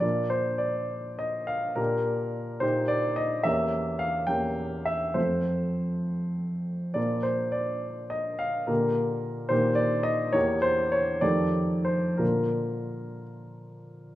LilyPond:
<<
  \new Staff \with { instrumentName = "Grand piano" } { \time 6/8 \key bes \major \tempo 4. = 69 d''8 c''8 d''4 ees''8 f''8 | bes'4. c''8 d''8 ees''8 | e''4 f''8 g''4 e''8 | c''2~ c''8 r8 |
d''8 c''8 d''4 ees''8 f''8 | bes'4. c''8 d''8 ees''8 | des''8 c''8 des''8 d''4 c''8 | bes'4. r4. | }
  \new Staff \with { instrumentName = "Grand piano" } { \time 6/8 \key bes \major <bes, bes d' f'>2. | <bes, bes d' g'>4. <bes, bes ees' g'>4. | <e, bes cis' g'>4. <e, bes cis' g'>4. | <f, a c' f'>2. |
<bes, f bes f'>2. | <bes, d bes g'>4. <bes, ees bes g'>4. | <e, e bes g'>4. <f, ees a g'>4. | <bes, d bes f'>2. | }
>>